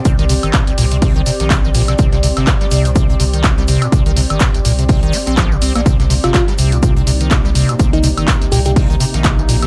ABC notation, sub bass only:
X:1
M:4/4
L:1/16
Q:"Swing 16ths" 1/4=124
K:Cm
V:1 name="Sub bass" clef=bass
C,,3 G,,, z2 C,,4 z B,,,4- B,,, | C,,3 G,,, z2 C,,4 C,,4- C,, z | C,,3 G,,, z2 C,,4 z B,,,3 C,, B,,, | C,,3 G,,, z2 C,,4 C,,4- C,, z |
C,,3 G,,, z2 C,,4 z B,,,4- B,,, |]